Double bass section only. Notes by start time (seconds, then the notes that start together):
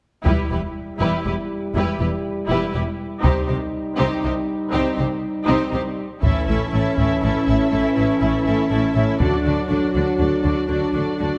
0.26 E1
0.50 E1
1.00 E1
1.25 E1
1.75 E1
2.00 E1
2.49 E1
2.75 E1
3.24 C2
3.49 C2
3.99 C2
4.24 C2
4.73 C2
4.98 C2
5.48 C2
5.73 C2
6.23 A1
6.47 A1
6.72 A1
6.98 A1
7.23 A1
7.47 A1
7.73 A1
7.98 A1
8.22 A1
8.46 A1
8.71 A1
8.95 A1
9.20 D2
9.45 D2
9.70 D2
9.94 D2
10.19 D2
10.44 D2
10.69 D2
10.94 D2
11.19 D2